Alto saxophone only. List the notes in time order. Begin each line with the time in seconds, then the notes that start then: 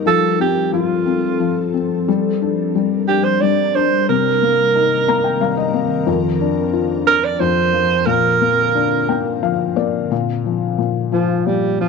0.07 A4
0.41 G4
0.74 F4
3.08 G4
3.24 C5
3.41 D5
3.75 C5
4.09 A#4
7.07 A#4
7.24 D5
7.40 C5
8.05 A#4
11.13 F3
11.46 G3
11.81 F3